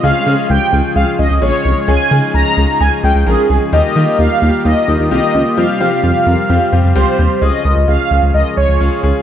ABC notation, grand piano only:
X:1
M:4/4
L:1/8
Q:1/4=130
K:Dblyd
V:1 name="Grand piano"
[A,DFA] [A,DFA] [A,DFG] [A,DFA] [A,DFA] [A,DFA] [A,DFA] [A,DFA] | [A,DFA] [A,DFA] [A,DFA] [A,DFA] [A,DFA] [A,DFA] [A,DFB] [A,DFA] | [B,EFG] [B,EFG] [B,EFG] [B,EFG] [B,EFG] [B,EFB] [B,EFG] [B,EFG] | [G,CFG] [G,CFG] [G,CFG] [G,CFB] [G,CFG] [G,CFG] [G,CFG] [G,CFG] |
[DFA] [DFB] [DFA] [DFA] [DFB] [DFA] [DFA] [DFA] |]